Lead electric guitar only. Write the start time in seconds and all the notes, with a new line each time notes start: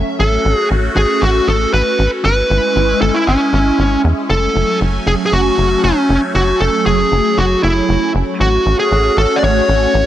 0.20 A4
0.55 G#4
0.97 G#4
1.22 F#4
1.48 A4
1.74 B4
2.25 B4
3.01 A4
3.14 E4
3.27 C#4
4.30 A4
5.07 G#4
5.26 G#4
5.33 F#4
5.84 C#4
6.35 F#4
6.60 A4
6.86 G#4
7.37 F#4
7.63 E4
8.41 F#4
8.80 G#4
9.18 A4
9.36 D5
9.44 C#5